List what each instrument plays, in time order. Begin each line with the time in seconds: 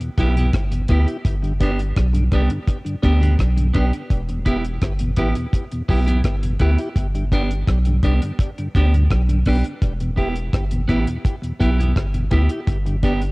0.00 tonewheel organ E2 B2, closed hi-hat
0.18 sub bass B1, tonewheel organ B3 E4 G4, clean electric guitar B3 E4 G4, kick, closed hi-hat
0.36 tonewheel organ E2 B2, clean electric guitar B3 E4 G4, closed hi-hat
0.53 sub bass G1, kick, cross-stick, closed hi-hat
0.71 tonewheel organ E2 B2, closed hi-hat
0.88 sub bass D2, tonewheel organ B3 E4 G4, clean electric guitar B3 E4 G4, kick, closed hi-hat
1.06 tonewheel organ E4 G4, closed hi-hat
1.25 sub bass G1, kick, closed hi-hat
1.42 tonewheel organ G2 D3, closed hi-hat
1.60 tonewheel organ B3 D4 G4, clean electric guitar B3 D4 G4, kick, closed hi-hat
1.79 closed hi-hat
1.96 sub bass B1, kick, cross-stick, closed hi-hat
2.13 tonewheel organ G2 D3, closed hi-hat
2.32 sub bass C2, tonewheel organ B3 D4 G4, clean electric guitar B3 D4 G4, kick, closed hi-hat
2.49 tonewheel organ G2 D3, muted clean electric guitar stroke, closed hi-hat
2.68 kick, closed hi-hat
2.85 tonewheel organ G2 D3, closed hi-hat
3.02 sub bass D2, tonewheel organ B3 D4 G4, clean electric guitar B3 D4 G4, kick, closed hi-hat
3.21 tonewheel organ G2 D3, clean electric guitar B3 D4 G4, closed hi-hat
3.39 sub bass B1, kick, cross-stick, closed hi-hat
3.57 tonewheel organ G2 D3, closed hi-hat
3.74 sub bass B1, clean electric guitar B3 D4 G4, tonewheel organ B3 D4 G4, kick, closed hi-hat
3.93 closed hi-hat
4.10 sub bass E1, kick, closed hi-hat
4.29 tonewheel organ E2 B2, closed hi-hat
4.46 clean electric guitar B3 E4 G4, tonewheel organ B3 E4 G4, kick, closed hi-hat
4.65 closed hi-hat
4.82 sub bass G1, kick, cross-stick, closed hi-hat
4.99 tonewheel organ E2 B2, closed hi-hat
5.16 sub bass A1, clean electric guitar B3 E4 G4, tonewheel organ B3 E4 G4, kick, closed hi-hat
5.35 tonewheel organ E2 B2, muted clean electric guitar stroke, closed hi-hat
5.53 kick, closed hi-hat
5.71 tonewheel organ E2 B2, closed hi-hat
5.88 sub bass B1, clean electric guitar B3 E4 G4, tonewheel organ B3 E4 G4, kick, open hi-hat
6.06 tonewheel organ E2 B2, clean electric guitar B3 E4 G4, closed hi-hat
6.24 sub bass G1, kick, cross-stick, closed hi-hat
6.43 tonewheel organ E2 B2, closed hi-hat
6.60 sub bass D2, clean electric guitar B3 E4 G4, tonewheel organ B3 E4 G4, kick, closed hi-hat
6.79 tonewheel organ E4 G4, closed hi-hat
6.96 sub bass G1, kick, closed hi-hat
7.15 tonewheel organ G2 D3, closed hi-hat
7.32 tonewheel organ B3 D4 G4, clean electric guitar B3 D4 G4, kick, closed hi-hat
7.51 closed hi-hat
7.67 sub bass B1, kick, cross-stick, closed hi-hat
7.85 tonewheel organ G2 D3, closed hi-hat
8.03 sub bass C2, clean electric guitar B3 D4 G4, tonewheel organ B3 D4 G4, kick, closed hi-hat
8.22 tonewheel organ G2 D3, muted clean electric guitar stroke, closed hi-hat
8.39 kick, closed hi-hat
8.58 tonewheel organ G2 D3, closed hi-hat
8.75 sub bass D2, clean electric guitar B3 D4 G4, tonewheel organ B3 D4 G4, kick, closed hi-hat
8.94 tonewheel organ G2 D3, closed hi-hat
9.10 sub bass B1, kick, cross-stick, closed hi-hat
9.28 tonewheel organ G2 D3, closed hi-hat
9.45 sub bass B1, clean electric guitar B3 D4 G4, tonewheel organ B3 D4 G4, kick, open hi-hat
9.64 closed hi-hat
9.82 sub bass E1, kick, closed hi-hat
10.00 tonewheel organ E2 B2, closed hi-hat
10.16 clean electric guitar B3 E4 G4, tonewheel organ B3 E4 G4, kick, closed hi-hat
10.35 closed hi-hat
10.53 sub bass G1, kick, cross-stick, closed hi-hat
10.71 tonewheel organ E2 B2, closed hi-hat
10.88 sub bass A1, clean electric guitar B3 E4 G4, tonewheel organ B3 E4 G4, kick, closed hi-hat
11.07 tonewheel organ E2 B2, muted clean electric guitar stroke, closed hi-hat
11.25 kick, closed hi-hat
11.42 tonewheel organ E2 B2, closed hi-hat
11.59 sub bass B1, tonewheel organ B3 E4 G4, clean electric guitar B3 E4 G4, kick, closed hi-hat
11.78 tonewheel organ E2 B2, clean electric guitar B3 E4 G4, closed hi-hat
11.96 sub bass G1, kick, cross-stick, closed hi-hat
12.14 tonewheel organ E2 B2, closed hi-hat
12.31 sub bass D2, tonewheel organ B3 E4 G4, clean electric guitar B3 E4 G4, kick, closed hi-hat
12.49 tonewheel organ E4 G4, closed hi-hat
12.67 sub bass G1, kick, closed hi-hat
12.86 tonewheel organ G2 D3, closed hi-hat
13.03 tonewheel organ B3 D4 G4, clean electric guitar B3 D4 G4, kick, closed hi-hat
13.21 closed hi-hat